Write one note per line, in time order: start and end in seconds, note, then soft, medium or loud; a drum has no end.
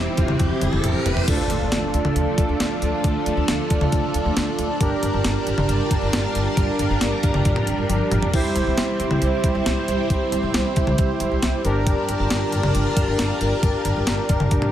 0.00 1.24 E3 medium
0.00 1.24 G3 medium
0.00 1.24 C4 medium
0.00 1.24 E4 medium
0.00 1.24 G4 medium
0.00 riser medium
0.17 0.27 E1 loud
0.17 kick medium
0.17 closed hi-hat medium
0.28 0.38 E1 medium
0.28 mid tom medium
0.39 0.49 E1 loud
0.39 kick medium
0.39 closed hi-hat medium
0.39 high tom medium
0.61 0.71 E1 loud
0.61 closed hi-hat medium
0.61 mid tom medium
0.73 0.82 E1 medium
0.73 mid tom medium
0.84 0.93 E1 loud
0.84 closed hi-hat medium
0.84 mid tom medium
1.06 1.15 E1 loud
1.06 closed hi-hat medium
1.06 floor tom loud
1.17 floor tom medium
1.28 1.37 D2 loud
1.28 4.77 F3 medium
1.28 4.77 A3 medium
1.28 8.30 D4 medium
1.28 4.77 D4 medium
1.28 4.77 F4 medium
1.28 4.77 A4 medium
1.28 kick loud
1.28 closed hi-hat medium
1.28 crash loud
1.28 impact medium
1.50 1.59 D2 loud
1.50 closed hi-hat medium
1.61 1.70 D2 loud
1.72 1.81 D2 loud
1.72 snare loud
1.72 closed hi-hat medium
1.94 2.03 D2 loud
1.94 closed hi-hat medium
2.05 2.14 D2 loud
2.05 mid tom loud
2.16 2.25 D2 loud
2.16 closed hi-hat medium
2.38 2.47 D2 loud
2.38 kick medium
2.38 closed hi-hat medium
2.49 2.58 D2 loud
2.60 2.69 D2 loud
2.60 snare loud
2.60 closed hi-hat medium
2.82 2.91 D2 loud
2.82 closed hi-hat medium
3.04 3.13 D2 loud
3.04 kick loud
3.04 closed hi-hat medium
3.26 3.35 D2 loud
3.26 closed hi-hat medium
3.37 3.46 D2 loud
3.48 3.57 D2 loud
3.48 snare loud
3.48 closed hi-hat medium
3.70 3.80 D2 loud
3.70 kick medium
3.70 closed hi-hat medium
3.81 3.90 D2 loud
3.81 mid tom loud
3.92 4.01 D2 loud
3.92 kick loud
3.92 closed hi-hat medium
4.14 4.23 D2 loud
4.14 closed hi-hat medium
4.25 4.34 D2 loud
4.36 4.45 D2 loud
4.36 snare loud
4.36 closed hi-hat medium
4.59 4.68 D2 loud
4.59 closed hi-hat medium
4.80 4.90 G1 loud
4.80 14.72 G3 medium
4.80 8.30 D4 medium
4.80 8.30 F4 medium
4.80 8.30 G4 medium
4.80 8.30 A#4 medium
4.80 8.30 A5 medium
4.80 kick loud
4.80 closed hi-hat medium
5.03 5.12 G1 loud
5.03 closed hi-hat medium
5.14 5.23 G1 loud
5.24 5.34 G1 loud
5.24 snare loud
5.24 closed hi-hat medium
5.47 5.56 G1 medium
5.47 closed hi-hat medium
5.58 5.67 G1 loud
5.58 mid tom loud
5.69 5.78 G1 loud
5.69 closed hi-hat medium
5.91 6.00 G1 loud
5.91 kick medium
5.91 closed hi-hat medium
6.02 6.11 G1 loud
6.13 6.22 G1 loud
6.13 snare loud
6.13 closed hi-hat medium
6.35 6.44 G1 loud
6.35 closed hi-hat medium
6.57 6.66 G1 loud
6.57 kick loud
6.57 closed hi-hat medium
6.79 6.88 G1 loud
6.79 closed hi-hat medium
6.90 6.99 G1 loud
7.01 7.10 G1 loud
7.01 snare loud
7.01 closed hi-hat medium
7.23 7.32 G1 loud
7.23 kick medium
7.23 closed hi-hat medium
7.34 7.43 G1 medium
7.34 mid tom loud
7.45 7.54 G1 loud
7.45 kick medium
7.45 closed hi-hat medium
7.56 mid tom loud
7.67 7.76 G1 loud
7.67 closed hi-hat medium
7.78 7.87 G1 medium
7.89 7.98 G1 loud
7.89 closed hi-hat medium
7.89 high tom medium
8.11 8.20 G1 loud
8.11 closed hi-hat medium
8.11 mid tom loud
8.23 floor tom loud
8.34 8.43 C2 loud
8.34 11.61 C4 medium
8.34 11.61 E4 medium
8.34 11.61 G4 medium
8.34 11.61 C5 medium
8.34 kick loud
8.34 crash medium
8.56 8.65 C2 loud
8.56 closed hi-hat medium
8.67 8.76 C2 loud
8.78 8.87 C2 loud
8.78 snare loud
8.78 closed hi-hat medium
9.00 9.09 C2 loud
9.00 closed hi-hat medium
9.11 9.20 C2 loud
9.11 mid tom loud
9.22 9.31 C2 loud
9.22 closed hi-hat medium
9.44 9.53 C2 loud
9.44 kick medium
9.44 closed hi-hat medium
9.55 9.64 C2 loud
9.66 9.75 C2 loud
9.66 snare loud
9.66 closed hi-hat medium
9.88 9.97 C2 loud
9.88 closed hi-hat medium
10.10 10.19 C2 loud
10.10 kick loud
10.10 closed hi-hat medium
10.32 10.41 C2 loud
10.32 closed hi-hat medium
10.43 10.52 C2 medium
10.54 10.63 C2 loud
10.54 snare loud
10.54 closed hi-hat medium
10.76 10.85 C2 loud
10.76 kick medium
10.76 closed hi-hat medium
10.87 10.96 C2 loud
10.87 mid tom loud
10.98 11.07 C2 loud
10.98 kick loud
10.98 closed hi-hat medium
11.20 11.29 C2 loud
11.20 closed hi-hat medium
11.31 11.40 C2 medium
11.42 11.52 C2 loud
11.42 snare loud
11.42 closed hi-hat medium
11.65 11.92 G1 loud
11.65 14.72 D4 medium
11.65 14.72 F4 medium
11.65 14.72 G4 medium
11.65 14.72 A#4 medium
11.65 14.72 A5 medium
11.65 closed hi-hat medium
11.87 kick loud
11.87 closed hi-hat medium
12.09 12.18 G1 loud
12.09 closed hi-hat medium
12.20 12.29 G1 loud
12.30 12.40 G1 loud
12.30 snare loud
12.30 closed hi-hat medium
12.52 12.62 G1 loud
12.52 closed hi-hat medium
12.63 12.73 G1 loud
12.63 mid tom loud
12.75 12.84 G1 loud
12.75 closed hi-hat medium
12.97 13.06 G1 loud
12.97 kick medium
12.97 closed hi-hat medium
13.08 13.17 G1 medium
13.19 13.28 G1 loud
13.19 snare loud
13.19 closed hi-hat medium
13.41 13.50 G1 loud
13.41 closed hi-hat medium
13.63 13.72 G1 loud
13.63 kick loud
13.63 closed hi-hat medium
13.85 13.94 G1 loud
13.85 closed hi-hat medium
13.96 14.05 G1 loud
14.07 14.16 G1 loud
14.07 snare loud
14.07 closed hi-hat medium
14.29 14.38 G1 loud
14.29 kick medium
14.29 closed hi-hat medium
14.40 14.49 G1 medium
14.40 mid tom loud
14.51 14.60 G1 loud
14.51 kick loud
14.51 closed hi-hat medium
14.62 mid tom loud